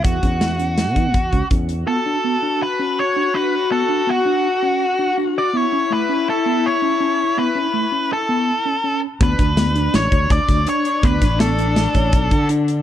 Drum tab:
HH |xxxxxxxxxx|----------|----------|----------|
SD |--o-o-----|----------|----------|----------|
BD |oo---oooo-|----------|----------|----------|

HH |----------|xxxxxxxxxx|xxxxxxxxxx|
SD |----------|--o-o-oo--|-oo-oo----|
BD |----------|oo---ooo--|oo---ooo--|